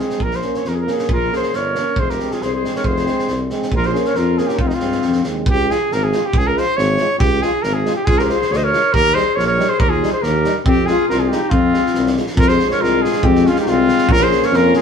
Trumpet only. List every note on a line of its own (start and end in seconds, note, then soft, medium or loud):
0.00 0.24 G#4 medium
0.22 0.37 A#4 medium
0.36 0.59 C5 medium
0.58 0.70 C#5 medium
0.68 0.81 G#4 medium
0.68 0.73 A#4 medium
0.80 0.92 A#4 medium
0.91 1.15 G#4 medium
1.13 1.33 A#4 medium
1.36 1.57 C5 medium
1.56 2.01 C#5 medium
2.00 2.12 C5 medium
2.10 2.34 A#4 medium
2.32 2.44 G#4 medium
2.42 2.53 C5 medium
2.54 2.73 C5 medium
2.76 2.87 C#5 medium
2.85 3.51 C5 medium
3.75 3.87 A#4 loud
3.86 4.09 C5 medium
4.08 4.18 C#5 medium
4.16 4.40 A#4 loud
4.38 4.49 G#4 medium
4.48 4.59 G4 medium
4.60 4.69 F4 medium
4.68 4.76 D#4 medium
4.75 5.25 F4 medium
5.49 5.73 G4 loud
5.71 5.94 G#4 medium
5.93 6.05 A#4 loud
6.04 6.27 G#4 medium
6.26 6.39 G4 loud
6.38 6.48 G#4 loud
6.47 6.60 A#4 medium
6.58 6.78 C5 loud
6.77 7.19 C#5 loud
7.19 7.44 G4 loud
7.42 7.64 G#4 loud
7.63 7.75 A#4 medium
7.74 7.95 G#4 medium
7.96 8.06 G4 medium
8.05 8.20 G#4 loud
8.18 8.23 A#4 medium
8.18 8.25 C5 medium
8.24 8.31 A#4 medium
8.30 8.53 C5 loud
8.52 8.58 C#5 medium
8.56 8.66 D#5 medium
8.64 8.95 C#5 loud
8.93 9.16 A#4 loud
9.14 9.37 C5 loud
9.36 9.47 C#5 loud
9.47 9.71 C#5 medium
9.69 9.81 C5 loud
9.80 9.91 A#4 loud
9.89 10.12 G#4 medium
10.13 10.24 C5 medium
10.22 10.55 A#4 loud
10.66 10.88 G4 loud
10.86 11.08 G#4 loud
11.09 11.21 A#4 medium
11.20 11.31 G#4 medium
11.29 11.51 G4 medium
11.50 12.15 F4 loud
12.37 12.50 A#4 loud
12.48 12.70 C5 loud
12.71 12.83 C#5 medium
12.82 13.04 A#4 loud
13.02 13.26 G#4 medium
13.25 13.48 G4 loud
13.47 13.59 F4 medium
13.59 13.70 G4 medium
13.68 14.13 F4 loud
14.11 14.24 A#4 loud
14.23 14.45 C5 loud
14.44 14.57 C#5 loud
14.56 14.75 A#4 loud
14.76 14.82 G#4 loud